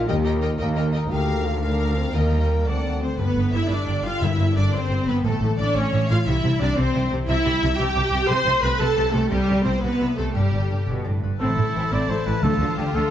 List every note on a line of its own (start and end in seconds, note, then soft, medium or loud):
0.00 0.25 D#4 soft
0.00 0.11 F4 medium
0.00 0.42 A#4 medium
0.00 0.59 D#5 medium
0.08 0.53 D#2 medium
0.08 0.54 D#2 medium
0.08 1.12 D#3 medium
0.08 0.42 G4 medium
0.08 0.15 A#4 medium
0.08 0.15 D#5 medium
0.08 0.15 G5 medium
0.25 0.93 D#4 soft
0.25 0.32 A#4 soft
0.25 0.32 D#5 medium
0.25 0.33 G5 medium
0.42 0.49 A#4 medium
0.42 0.76 A#4 soft
0.42 0.49 D#5 soft
0.42 0.49 G5 medium
0.59 1.05 D#2 medium
0.59 0.91 A#3 medium
0.59 0.66 A#4 medium
0.59 0.66 D#5 medium
0.59 1.12 D#5 medium
0.59 0.67 G5 medium
0.76 0.83 A#4 soft
0.76 1.43 A#4 soft
0.76 0.83 D#5 soft
0.76 0.85 G5 medium
0.91 1.09 D#4 medium
0.91 1.12 D#4 soft
0.91 1.00 A#4 soft
0.91 1.01 D#5 medium
0.96 1.02 G5 soft
1.10 2.10 D2 medium
1.10 2.15 D3 medium
1.10 1.45 G4 medium
1.10 1.58 A#4 medium
1.10 1.59 F5 soft
1.10 1.59 F5 medium
1.28 2.68 A#3 soft
1.45 1.62 F4 medium
1.45 1.79 A#4 soft
1.61 1.95 D4 medium
1.61 1.96 F4 soft
1.61 2.13 A#4 medium
1.61 2.13 F5 medium
1.61 2.13 F5 soft
1.80 2.48 A#4 soft
1.96 2.13 C4 medium
1.96 2.15 F4 soft
2.12 2.65 D#2 soft
2.12 2.68 D#3 soft
2.12 2.67 A#3 medium
2.12 2.66 A#4 soft
2.12 2.39 D#5 soft
2.12 2.66 G5 soft
2.31 2.68 G3 soft
2.40 2.48 D#5 soft
2.48 2.68 G4 soft
2.48 2.68 A#4 soft
2.66 3.01 D2 soft
2.66 3.20 D3 soft
2.66 3.19 C4 medium
2.66 3.02 D5 soft
2.66 3.01 F#5 soft
2.66 3.01 A5 soft
2.84 3.20 A3 soft
3.01 3.09 C4 soft
3.01 3.20 F#4 soft
3.01 3.17 C5 medium
3.01 3.18 C5 soft
3.01 5.26 D5 soft
3.18 3.25 G1 medium
3.18 4.21 G2 medium
3.18 3.26 G2 medium
3.18 3.53 B3 medium
3.18 3.53 B4 medium
3.36 3.42 G1 soft
3.36 3.43 G2 medium
3.36 4.23 D3 soft
3.52 3.60 G1 medium
3.52 3.60 G2 medium
3.52 3.71 E4 medium
3.52 4.55 G4 soft
3.52 3.70 E5 medium
3.70 3.77 G1 medium
3.70 3.77 G2 soft
3.70 4.05 D4 medium
3.70 4.04 B4 soft
3.70 4.05 D5 medium
3.70 4.04 D5 soft
3.87 3.94 G1 medium
3.87 3.94 G2 soft
3.87 4.88 G5 medium
4.03 4.10 G1 soft
4.03 4.11 G2 medium
4.03 4.22 F4 medium
4.03 4.23 B4 medium
4.03 4.21 F5 medium
4.03 4.22 F5 medium
4.21 4.28 G1 medium
4.21 4.69 G2 medium
4.21 4.29 G2 medium
4.21 5.26 G2 medium
4.21 4.57 E4 medium
4.21 4.56 E5 medium
4.21 4.57 E5 medium
4.39 4.46 G1 soft
4.39 4.46 G2 medium
4.39 5.26 D3 soft
4.55 4.63 G1 medium
4.55 4.63 G2 medium
4.55 4.73 D4 medium
4.55 5.26 G4 soft
4.55 4.72 D5 medium
4.55 4.73 D5 medium
4.72 4.79 G1 medium
4.72 4.80 G2 medium
4.72 5.08 C4 medium
4.72 5.06 C5 medium
4.72 5.07 C5 soft
4.72 5.08 C5 medium
4.89 4.96 G1 medium
4.89 4.98 G2 soft
4.89 5.25 G5 medium
5.06 5.13 G1 medium
5.06 5.15 G2 medium
5.06 5.25 B3 medium
5.06 5.24 B4 medium
5.06 5.15 B4 medium
5.06 5.26 C5 medium
5.23 5.30 A1 medium
5.23 6.28 A2 medium
5.23 5.32 A2 medium
5.23 5.59 A3 medium
5.23 5.57 A4 medium
5.23 5.58 A4 medium
5.40 5.47 A1 medium
5.40 5.49 A2 medium
5.40 6.28 E3 soft
5.57 5.65 A1 medium
5.57 5.66 A2 medium
5.57 5.76 D4 medium
5.57 6.59 E4 soft
5.57 5.74 D5 medium
5.57 5.75 D5 medium
5.75 5.82 A1 medium
5.75 5.82 A2 medium
5.75 6.10 C#4 medium
5.75 6.08 C#5 medium
5.75 6.09 C#5 medium
5.75 6.10 C#5 medium
5.92 5.99 A1 medium
5.92 5.99 A2 medium
5.92 6.93 E5 medium
6.09 6.16 A1 medium
6.09 6.17 A2 medium
6.09 6.17 F4 medium
6.09 6.28 C#5 medium
6.09 6.26 F5 medium
6.09 6.17 F5 medium
6.26 6.34 C2 medium
6.26 7.27 C3 medium
6.26 6.34 C3 medium
6.26 6.60 E4 medium
6.26 6.61 E5 medium
6.26 6.60 E5 medium
6.43 6.51 C2 medium
6.43 6.50 C3 medium
6.43 7.44 G3 medium
6.60 6.67 C2 medium
6.60 6.68 C3 medium
6.60 6.78 D4 medium
6.60 7.61 E4 medium
6.60 6.77 D5 medium
6.77 6.84 C2 medium
6.77 6.84 C3 medium
6.77 7.11 C4 medium
6.77 10.37 C4 medium
6.77 7.10 C5 medium
6.77 7.11 C5 medium
6.94 7.02 C2 medium
6.94 7.01 C3 medium
6.94 7.95 E5 medium
7.11 7.18 C2 medium
7.11 7.18 C3 medium
7.11 10.37 G4 medium
7.27 7.35 C2 medium
7.27 8.28 C3 medium
7.27 7.35 C3 medium
7.27 7.75 E4 loud
7.27 7.75 E5 medium
7.45 7.52 C2 medium
7.45 7.52 C3 medium
7.45 8.31 G3 soft
7.62 7.69 C2 medium
7.62 7.69 C3 medium
7.62 8.62 E4 medium
7.78 7.85 C2 medium
7.78 7.86 C3 medium
7.78 8.28 G4 loud
7.78 8.29 G5 medium
7.95 8.02 C2 medium
7.95 8.03 C3 medium
7.95 8.96 E5 medium
8.11 8.18 C2 medium
8.11 8.19 C3 medium
8.28 8.35 C2 medium
8.28 9.29 C3 medium
8.28 8.36 C3 medium
8.28 8.63 C5 loud
8.28 8.62 C6 medium
8.28 8.63 C6 medium
8.45 8.52 C2 medium
8.45 8.53 C3 medium
8.45 9.33 A3 medium
8.63 8.70 C2 medium
8.63 8.70 C3 medium
8.63 9.63 E4 medium
8.63 8.80 B4 medium
8.63 8.80 B5 medium
8.78 8.87 C2 medium
8.78 8.86 C3 medium
8.78 9.14 A4 loud
8.78 10.36 A4 medium
8.78 9.12 A5 medium
8.78 9.14 A5 medium
8.96 9.04 C2 medium
8.96 9.03 C3 medium
8.96 9.98 E5 medium
9.12 9.22 C2 medium
9.12 9.21 C3 medium
9.12 9.31 A3 medium
9.12 9.19 A4 medium
9.12 9.31 A4 medium
9.29 9.38 C2 medium
9.29 10.36 C3 medium
9.29 9.38 C3 medium
9.29 9.64 G3 medium
9.29 9.63 G4 medium
9.29 9.64 G4 medium
9.48 9.55 C2 medium
9.48 9.55 C3 medium
9.48 11.41 G3 soft
9.63 9.73 C2 medium
9.63 9.72 C3 medium
9.63 9.82 C4 medium
9.63 10.36 E4 medium
9.63 9.82 C5 medium
9.81 9.90 C2 medium
9.81 9.90 C3 medium
9.81 10.16 B3 medium
9.81 10.17 B4 medium
9.81 10.16 B4 medium
9.99 10.07 C2 medium
9.99 10.07 C3 soft
9.99 10.36 E5 soft
10.16 10.25 C2 medium
10.16 10.24 C3 medium
10.16 10.34 A3 medium
10.16 10.24 A4 medium
10.16 10.35 A4 medium
10.16 10.36 C5 medium
10.34 10.42 G1 medium
10.34 10.42 G2 medium
10.34 11.42 G2 medium
10.34 10.87 G3 medium
10.34 10.86 G4 medium
10.34 10.87 G4 soft
10.52 10.60 G1 soft
10.52 10.60 G2 soft
10.52 11.41 D3 soft
10.70 10.77 G1 medium
10.70 10.77 G2 soft
10.70 11.42 D4 soft
10.87 10.95 G1 soft
10.87 11.04 B2 medium
10.87 11.22 B4 soft
11.04 11.13 G1 soft
11.04 11.23 A2 medium
11.04 11.41 D5 soft
11.23 11.30 G1 soft
11.23 11.40 G2 soft
11.23 11.42 B4 soft
11.38 11.48 A1 medium
11.38 11.47 A2 medium
11.38 12.45 A2 medium
11.38 11.56 C4 medium
11.38 12.39 E4 medium
11.38 11.94 A4 medium
11.38 13.11 A5 medium
11.50 12.34 E3 soft
11.57 11.65 A1 soft
11.57 11.64 A2 soft
11.57 11.65 A3 soft
11.57 12.26 A3 soft
11.67 11.84 C4 soft
11.75 11.82 A1 soft
11.75 11.82 A2 soft
11.75 11.82 E3 medium
11.75 11.82 E3 soft
11.75 11.82 C4 medium
11.75 12.09 A4 soft
11.85 12.18 C4 soft
11.92 11.99 A1 medium
11.92 11.99 A2 medium
11.92 12.08 C4 medium
11.92 12.45 C5 medium
11.92 12.11 D5 medium
12.02 13.01 A5 soft
12.09 12.16 A1 soft
12.09 12.16 A2 soft
12.09 12.16 A3 soft
12.09 12.76 A4 medium
12.09 12.27 C5 medium
12.19 12.45 C4 soft
12.26 12.33 A1 soft
12.26 12.33 A2 soft
12.26 12.32 E3 medium
12.26 12.33 E3 medium
12.26 12.60 A3 medium
12.26 12.32 C4 medium
12.26 12.44 B4 medium
12.35 12.45 E3 soft
12.42 12.49 D2 medium
12.42 12.91 D3 medium
12.42 12.50 D3 medium
12.42 13.11 D3 medium
12.42 12.59 A3 medium
12.42 13.11 F4 medium
12.42 12.77 A4 medium
12.52 13.11 D4 soft
12.59 12.66 D2 soft
12.59 12.68 D3 soft
12.59 12.67 F3 soft
12.59 13.11 A3 soft
12.70 12.84 F4 soft
12.77 12.84 D2 medium
12.77 12.84 D3 soft
12.77 12.85 D3 soft
12.77 12.85 F3 medium
12.77 12.85 D4 medium
12.77 12.96 G4 medium
12.77 13.10 A4 soft
12.86 13.11 F4 soft
12.94 13.01 D2 medium
12.94 13.01 D3 medium
12.94 13.10 A3 medium
12.94 13.11 A4 medium
12.94 13.11 F5 medium
13.02 13.11 A5 medium